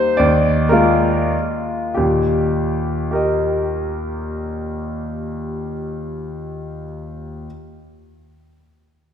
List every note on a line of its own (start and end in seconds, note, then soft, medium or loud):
0.00 0.15 G3 soft
0.00 0.16 A#3 soft
0.00 0.16 D#4 soft
0.00 0.18 C5 medium
0.17 0.71 D#2 medium
0.17 0.71 D5 medium
0.69 1.93 G#3 soft
0.69 1.93 A#3 soft
0.69 1.93 F4 soft
0.69 1.32 A#4 medium
1.94 5.74 D#2 soft
1.94 5.73 A#2 soft
1.94 3.09 G4 soft
3.11 6.83 G4 soft
3.11 6.83 A#4 soft
3.15 6.85 D#5 soft